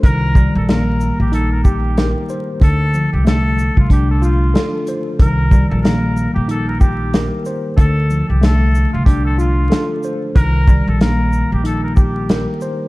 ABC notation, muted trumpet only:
X:1
M:4/4
L:1/16
Q:"Swing 16ths" 1/4=93
K:Cdor
V:1 name="Muted trumpet"
B3 A B3 G A B G3 z3 | A3 G A3 F G A F3 z3 | B3 A B3 G A B G3 z3 | A3 G A3 F G A F3 z3 |
B3 A B3 G A B G3 z3 |]